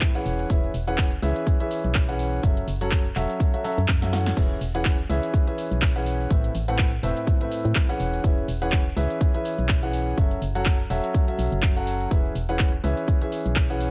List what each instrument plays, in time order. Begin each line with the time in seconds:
Already playing: grand piano A2 C4 A4 B4 E5
0.01 kick, clap, closed hi-hat, shaker
0.15 grand piano E3 C#4 G#4 B4 F#5, closed hi-hat, shaker
0.26 fm bass E1, open hi-hat, shaker
0.39 closed hi-hat, shaker
0.50 fm bass E1, grand piano E3 C#4 G#4 B4 E5, kick, closed hi-hat, shaker
0.64 shaker
0.74 fm bass E1, open hi-hat, shaker
0.87 grand piano E3 C#4 G#4 B4 F#5, closed hi-hat, shaker
0.98 kick, clap, closed hi-hat, shaker
1.12 shaker
1.22 fm bass C#2, grand piano E3 C#4 G#4 B4 E5, open hi-hat, shaker
1.36 closed hi-hat, shaker
1.47 kick, closed hi-hat, shaker
1.60 grand piano E3 C#4 G#4 B4 E5, closed hi-hat, shaker
1.71 open hi-hat, shaker
1.84 fm bass B1, closed hi-hat, shaker
1.95 kick, clap, closed hi-hat, shaker
2.08 grand piano E3 C#4 G#4 B4 F#5, closed hi-hat, shaker
2.19 open hi-hat, shaker
2.33 shaker
2.43 fm bass F#1, grand piano F#3 A4 E5, kick, closed hi-hat, shaker
2.57 closed hi-hat, shaker
2.68 fm bass F#1, open hi-hat, shaker
2.81 grand piano F#3 C#4 F#4 A4 F#5, closed hi-hat, shaker
2.91 kick, clap, closed hi-hat, shaker
3.06 shaker
3.16 fm bass E1, grand piano F#3 C#4 F#4 A4 E5, clap, open hi-hat, shaker
3.30 closed hi-hat, shaker
3.40 kick, closed hi-hat, shaker
3.54 grand piano F#3 C#4 F#4 A4 E5, closed hi-hat, shaker
3.64 grand piano F#3 C#4 F#4 A4 E5, open hi-hat, shaker
3.78 fm bass F#2, closed hi-hat, shaker
3.88 fm bass F#2, kick, clap, closed hi-hat, shaker
4.02 grand piano F#3 C#4 F#4 A4 E5, snare, closed hi-hat, shaker
4.13 grand piano E3 C#4 F#4 A4 F#5, snare, open hi-hat, shaker
4.26 snare, closed hi-hat, shaker
4.37 fm bass E1, grand piano E3 C#4 G#4 B4 E5, kick, closed hi-hat, crash, shaker
4.51 shaker
4.61 fm bass E1, open hi-hat, shaker
4.75 grand piano E3 C#4 G#4 B4 F#5, closed hi-hat, shaker
4.85 kick, clap, closed hi-hat, shaker
4.99 shaker
5.09 fm bass C#2, grand piano E3 C#4 G#4 B4 E5, open hi-hat, shaker
5.23 closed hi-hat, shaker
5.34 kick, closed hi-hat, shaker
5.47 grand piano E3 C#4 G#4 B4 E5, closed hi-hat, shaker
5.58 open hi-hat, shaker
5.71 fm bass B1, closed hi-hat, shaker
5.82 kick, clap, closed hi-hat, shaker
5.96 grand piano E3 C#4 G#4 B4 F#5, closed hi-hat, shaker
6.06 open hi-hat, shaker
6.20 shaker
6.30 fm bass A1, grand piano A2 C4 A4 B4 E5, kick, closed hi-hat, shaker
6.44 closed hi-hat, shaker
6.55 fm bass A1, open hi-hat, shaker
6.68 grand piano A2 C4 A4 B4 F#5, closed hi-hat, shaker
6.79 kick, clap, closed hi-hat, shaker
6.93 shaker
7.03 fm bass E1, grand piano A2 C4 A4 B4 E5, open hi-hat, shaker
7.17 closed hi-hat, shaker
7.27 kick, closed hi-hat, shaker
7.41 grand piano A2 C4 A4 B4 E5, closed hi-hat, shaker
7.52 open hi-hat, shaker
7.65 fm bass A2, closed hi-hat, shaker
7.75 kick, clap, closed hi-hat, shaker
7.89 grand piano E3 C#4 G#4 B4 F#5, closed hi-hat, shaker
8.00 fm bass E1, open hi-hat, shaker
8.13 closed hi-hat, shaker
8.24 fm bass E1, grand piano E3 C#4 G#4 B4 E5, kick, closed hi-hat, shaker
8.38 shaker
8.48 fm bass E1, open hi-hat, shaker
8.62 grand piano E3 C#4 G#4 B4 F#5, closed hi-hat, shaker
8.72 kick, clap, closed hi-hat, shaker
8.86 shaker
8.97 fm bass C#2, grand piano E3 C#4 G#4 B4 E5, open hi-hat, shaker
9.10 closed hi-hat, shaker
9.21 kick, closed hi-hat, shaker
9.34 grand piano E3 C#4 G#4 B4 E5, closed hi-hat, shaker
9.45 open hi-hat, shaker
9.58 fm bass B1, closed hi-hat, shaker
9.69 kick, clap, closed hi-hat, shaker
9.82 grand piano E3 C#4 G#4 B4 F#5, closed hi-hat, shaker
9.93 open hi-hat, shaker
10.07 shaker
10.18 fm bass F#1, grand piano F#3 C#4 F#4 A4 E5, kick, closed hi-hat, shaker
10.31 closed hi-hat, shaker
10.42 fm bass F#1, open hi-hat, shaker
10.55 grand piano F#3 C#4 F#4 A4 F#5, closed hi-hat, shaker
10.66 kick, clap, closed hi-hat, shaker
10.80 shaker
10.90 fm bass E1, grand piano F#3 C#4 F#4 A4 E5, open hi-hat, shaker
11.04 closed hi-hat, shaker
11.14 kick, closed hi-hat, shaker
11.28 grand piano F#3 C#4 F#4 A4 E5, closed hi-hat, shaker
11.38 fm bass B1, open hi-hat, shaker
11.52 fm bass F#1, closed hi-hat, shaker
11.62 kick, clap, closed hi-hat, shaker
11.76 grand piano F#3 C#4 F#4 A4 F#5, closed hi-hat, shaker
11.87 open hi-hat, shaker
12.01 closed hi-hat, shaker
12.11 fm bass E1, grand piano E3 C#4 G#4 B4 E5, kick, closed hi-hat, shaker
12.25 shaker
12.35 fm bass E1, open hi-hat, shaker
12.49 grand piano E3 C#4 G#4 B4 F#5, closed hi-hat, shaker
12.59 kick, clap, closed hi-hat, shaker
12.73 shaker
12.84 fm bass C#2, grand piano E3 C#4 G#4 B4 E5, open hi-hat, shaker
12.97 closed hi-hat, shaker
13.08 kick, closed hi-hat, shaker
13.21 grand piano E3 C#4 G#4 B4 E5, closed hi-hat, shaker
13.32 open hi-hat, shaker
13.46 fm bass B1, closed hi-hat, shaker
13.56 kick, clap, closed hi-hat, shaker
13.70 grand piano E3 C#4 G#4 B4 F#5, closed hi-hat, shaker
13.81 open hi-hat, shaker